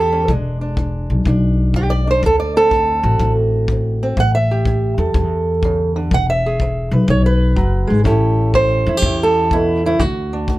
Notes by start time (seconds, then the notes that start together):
Already playing: E2 A2 C#4 A4
0.00 G4
0.12 C#4
0.28 E1 E3 G#3 D4, kick
0.61 D4
0.77 E3, kick
1.10 B1
1.25 B1 E3 D4, kick
1.74 E3 G4, kick
1.90 D5
2.07 D4 C5
2.23 D2 D3 A4, kick
2.40 D5
2.56 C4 A4
2.71 D3, kick
3.03 A1 F#4
3.20 A1 D3, kick
3.68 D3, kick
4.03 C4
4.17 A1 A2 F#5, kick
4.35 E5
4.51 G4
4.65 A2, kick
4.98 E2 A4
5.14 E2 A2, kick
5.63 C#3, kick
5.96 D3
6.11 E1 E3 F#5, kick
6.30 E5
6.46 G#4
6.60 E3, kick
6.91 B1 B4
7.08 B1 E3 C#5, kick
7.26 B4
7.56 F#1 F#3, kick
7.87 G#1 G#3
8.04 A1 A2 C#4 E4 G4 A4, kick
8.54 A2 C5, kick
8.86 E2 E4
8.97 G4
9.02 E2 A2 E4, kick
9.23 A4
9.51 B2 E4, kick
9.86 C#3 E4
10.00 D2 D3 F#4, kick
10.33 D4
10.48 D3, kick